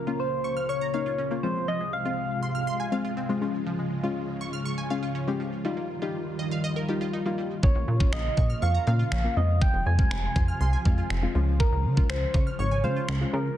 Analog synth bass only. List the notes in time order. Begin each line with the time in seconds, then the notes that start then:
7.63 A#1
7.76 A#1
7.88 A#2
8.13 A#1
8.37 A#2
8.62 F2
8.87 A#2
9.12 A#1
9.37 F2
9.74 F1
9.86 F2
10.11 F1
10.36 F2
10.61 C2
10.85 F2
11.10 F1
11.35 C#2
11.72 C#2
11.85 C#3
12.09 C#2
12.34 C#3
12.59 G#1
12.84 C#3
13.08 C#2
13.33 C#3